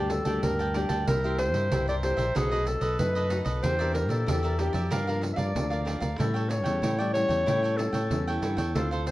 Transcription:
Already playing: fingered electric bass D2, nylon-string guitar G2 D3 G3 A#3 D4 G4, clarinet G4, cavaquinho A5
0.10 clarinet A4, muted cavaquinho stroke, pandeiro
0.25 fingered electric bass D2, nylon-string guitar D3 G3 A#3 D4 G4, cavaquinho D5 G5 A5, pandeiro
0.43 fingered electric bass D2, nylon-string guitar G2, clarinet A#4, pandeiro
0.59 cavaquinho D5 G5 A5, pandeiro
0.74 nylon-string guitar D3 G3 A#3 D4 G4, cavaquinho A#4 D5 G5 A5, pandeiro
0.89 fingered electric bass D2, cavaquinho D5 G5 A5, pandeiro
1.07 fingered electric bass C2, nylon-string guitar C3 A#3 E4 G4, cavaquinho E4 A#4 C5 E5, clarinet A#4, pandeiro
1.23 nylon-string guitar A#3 E4 G4, cavaquinho A#4 C5 E5, pandeiro
1.39 clarinet C5, muted cavaquinho stroke, pandeiro
1.54 fingered electric bass G2, cavaquinho A#4 C5 E5, pandeiro
1.71 fingered electric bass C2, nylon-string guitar G2 A#3 E4 G4, cavaquinho E4 A#4 C5 E5, pandeiro
1.87 cavaquinho A#4 C5 E5, clarinet D5, pandeiro
2.02 nylon-string guitar A#3 E4 G4, clarinet C5, pandeiro
2.17 fingered electric bass A#1, cavaquinho A#4 C5 E5, pandeiro
2.35 fingered electric bass B1, nylon-string guitar B2 A3 D#4 F#4, cavaquinho D#4 A4 B4 D#5, clarinet G#4, pandeiro
2.51 nylon-string guitar A3 D#4 F#4, cavaquinho A4 B4 D#5, pandeiro
2.66 clarinet A4, muted cavaquinho stroke, pandeiro
2.81 fingered electric bass B1, cavaquinho A4 B4 D#5, pandeiro
2.99 fingered electric bass F#2, nylon-string guitar F#2 A3 D#4 F#4, clarinet B4, pandeiro
3.15 cavaquinho A4 B4 D#5, pandeiro
3.30 nylon-string guitar A3 D#4 F#4, cavaquinho D#4 A4 B4 D#5, pandeiro
3.45 fingered electric bass B1, cavaquinho A4 B4 D#5, pandeiro
3.63 fingered electric bass E2, nylon-string guitar E3 A#3 D4 G4, cavaquinho G4 A#4 D5 E5, clarinet C5, pandeiro
3.79 nylon-string guitar A#3 D4 G4, cavaquinho A#4 D5 E5, pandeiro
3.94 clarinet A#4, muted cavaquinho stroke, pandeiro
4.09 fingered electric bass A#2, clarinet A4, cavaquinho A#4 D5 E5, pandeiro
4.26 fingered electric bass E2, nylon-string guitar E3 A#3 D4 G4, cavaquinho G4 A#4 D5 E5, pandeiro
4.43 cavaquinho A#4 D5 E5, pandeiro
4.59 nylon-string guitar A#3 D4 G4, clarinet G4, pandeiro
4.73 fingered electric bass F2, clarinet G4, cavaquinho A#4 D5 E5, pandeiro
4.90 fingered electric bass G2, nylon-string guitar G2 F3 A#3 D4, cavaquinho G4 A#4 D5 F5, clarinet A#4, pandeiro
5.07 nylon-string guitar F3 A#3 D4, cavaquinho A#4 D5 F5, pandeiro
5.22 muted cavaquinho stroke, pandeiro
5.33 cavaquinho D5 F5, clarinet D5 E5
5.38 fingered electric bass G2, cavaquinho A#4, pandeiro
5.55 fingered electric bass D2, nylon-string guitar D3 F3 A#3 D4, pandeiro
5.70 cavaquinho A#4 D5 F5, pandeiro
5.85 nylon-string guitar F3 A#3 D4, cavaquinho G4 A#4 D5 F5, pandeiro
6.00 fingered electric bass D2, cavaquinho A#4 D5 F5, pandeiro
6.18 fingered electric bass A2, nylon-string guitar A2 G3 C#4 E4, cavaquinho E4 A4 C#5 G5, clarinet A4, pandeiro
6.34 cavaquinho A4 C#5 G5, pandeiro
6.49 clarinet C#5, muted cavaquinho stroke, pandeiro
6.64 fingered electric bass E2, nylon-string guitar G3 C#4 E4, cavaquinho A4 C#5 G5, pandeiro
6.82 fingered electric bass A2, nylon-string guitar E3, cavaquinho E4 A4 C#5 G5, pandeiro
6.99 nylon-string guitar G3 C#4 E4, cavaquinho A4 C#5 G5, clarinet D5, pandeiro
7.13 nylon-string guitar G3 C#4 E4, clarinet C#5, pandeiro
7.29 fingered electric bass E2, cavaquinho A4 C#5 G5, pandeiro
7.46 fingered electric bass A2, nylon-string guitar A2 G3 C#4 E4, cavaquinho E4 A4 C#5 G5, pandeiro
7.63 cavaquinho A4 C#5 G5, pandeiro
7.77 nylon-string guitar G3 C#4 E4, clarinet A4, muted cavaquinho stroke, pandeiro
7.93 fingered electric bass A2, cavaquinho A4 C#5 G5, pandeiro
8.10 fingered electric bass E2, nylon-string guitar E3 G3 C#4 E4, pandeiro
8.28 cavaquinho A4 C#5 G5, pandeiro
8.42 fingered electric bass G2, cavaquinho E4 A4 C#5 G5, pandeiro
8.57 fingered electric bass E2, cavaquinho A4 C#5 G5, pandeiro
8.75 fingered electric bass D2, nylon-string guitar D3 A3 C4 F4, cavaquinho D4 A4 C5 F5, clarinet A4, pandeiro
8.91 cavaquinho A4 C5 F5, pandeiro
9.06 clarinet C5, muted cavaquinho stroke, pandeiro

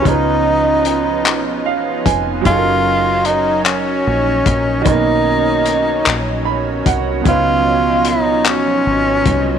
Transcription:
Already playing: analog synth pad F3 B3 C#4 D#4
0.02 fingered electric bass C#2, grand piano C#3 C#4, kick, closed hi-hat
0.06 grand piano D#4 F4, tenor saxophone D#4
0.11 grand piano B4
0.85 closed hi-hat
1.25 fingered electric bass B1, clap, closed hi-hat
1.66 grand piano F5
2.06 fingered electric bass F1, grand piano G#5, kick, closed hi-hat
2.41 grand piano F#3 C#4, analog synth pad F#3 D#4
2.45 fingered electric bass F#1, grand piano D#4 G#4, tenor saxophone F4, kick, closed hi-hat
2.51 grand piano A4
2.57 grand piano A#4
3.25 tenor saxophone D#4, closed hi-hat
3.65 tenor saxophone C#4, clap, closed hi-hat
4.07 fingered electric bass A#1
4.46 fingered electric bass A#1, kick, closed hi-hat
4.82 grand piano D#3 B3, analog synth pad F#3, tenor saxophone D#4, kick, closed hi-hat
4.86 fingered electric bass B1, grand piano C#4 D#4
4.91 grand piano A#3
5.66 closed hi-hat
6.05 fingered electric bass A#1, clap, closed hi-hat
6.45 grand piano B5
6.86 fingered electric bass C2, grand piano F#5, kick, closed hi-hat
7.22 grand piano B2 C#4, kick, closed hi-hat
7.26 fingered electric bass C#2, analog synth pad F3 D#4, grand piano D#4 F4, tenor saxophone F4
7.30 grand piano B4
8.05 tenor saxophone D#4, closed hi-hat
8.45 tenor saxophone C#4, clap, closed hi-hat
8.87 fingered electric bass G#1
9.26 fingered electric bass C2, kick, closed hi-hat

